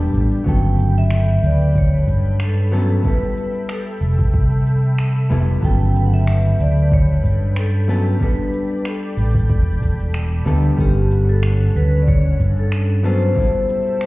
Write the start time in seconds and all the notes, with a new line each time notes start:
Already playing: G3 B3 D4 A4 D5 G5 B5
0.14 A1, cabasa
0.32 cabasa
0.44 G1 C#3 F#3 B3 B4 G5, kick, cabasa
0.48 A4 G5
0.64 cabasa
0.79 cabasa
0.96 E5, cabasa
1.10 finger snap, cabasa
1.28 cabasa
1.43 D2 D5, cabasa
1.61 cabasa
1.75 C#5, kick, cabasa
1.93 cabasa
2.08 G2, kick, cabasa
2.25 cabasa
2.40 A4, finger snap, cabasa
2.57 cabasa
2.71 F#3 B3 C#4 A4, cabasa
2.90 cabasa
3.02 G3 B3 E4 E5 G5, kick, cabasa
3.07 A4 B4
3.22 cabasa
3.37 cabasa
3.54 cabasa
3.64 B4
3.69 A4, finger snap, cabasa
3.87 cabasa
4.01 F1, cabasa
4.19 kick, cabasa
4.34 C2, kick, cabasa
4.52 cabasa
4.67 cabasa
4.84 cabasa
4.98 finger snap, cabasa
5.16 cabasa
5.30 F1 G3 B3 E4 A4, cabasa
5.49 cabasa
5.61 G1 C#3 F#3 B3 B4 G5, kick, cabasa
5.65 A4
5.81 cabasa
5.96 cabasa
6.06 F#5
6.13 E5, cabasa
6.27 finger snap, cabasa
6.45 cabasa
6.59 D2 D5, cabasa
6.77 cabasa
6.92 C#5, kick, cabasa
7.10 cabasa
7.24 G2, kick, cabasa
7.42 cabasa
7.56 A4, finger snap, cabasa
7.74 cabasa
7.88 F#3 B3 C#4 A4, cabasa
8.06 cabasa
8.19 G3 B3 D4 B4 D5 G5, kick, cabasa
8.23 A4
8.38 cabasa
8.53 cabasa
8.71 cabasa
8.85 A4, finger snap, cabasa
9.03 cabasa
9.17 A1, cabasa
9.35 kick, cabasa
9.50 E1, kick, cabasa
9.68 cabasa
9.82 E1, kick, cabasa
10.00 cabasa
10.14 finger snap, cabasa
10.32 cabasa
10.45 D2 G3 B3 D4 A4, cabasa
10.65 cabasa
10.77 G1 G3 B3 C#4 G4 F#5, kick, cabasa
10.81 A4
10.96 cabasa
11.11 cabasa
11.29 A4, cabasa
11.43 finger snap, cabasa
11.61 cabasa
11.75 D2 B4, cabasa
11.93 cabasa
12.02 D5
12.08 C#5, kick, cabasa
12.25 cabasa
12.40 G2, kick, cabasa
12.58 A4, cabasa
12.72 finger snap, cabasa
12.90 cabasa
13.03 F#3 B3 C#4 A4 C5, cabasa
13.22 cabasa
13.34 B2 G3 E4 A4 E5 G5 B5, kick, cabasa
13.39 A4
13.54 cabasa
13.69 cabasa
13.87 cabasa
14.01 finger snap, cabasa